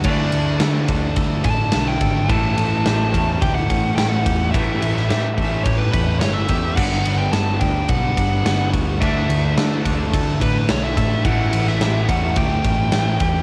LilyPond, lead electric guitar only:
\new Staff \with { instrumentName = "Lead electric guitar" } { \time 4/4 \key a \mixolydian \tempo 4 = 107 d''4 r4. a''8. g''8. | a''2 g''16 fis''8. g''16 fis''8. | e''2 cis''16 b'16 b'8 cis''16 e''8. | fis''8. g''16 a''8 g''8 fis''4. r8 |
e''4 r4. b'8 cis''16 e''8. | fis''8. e''8. fis''8 g''2 | }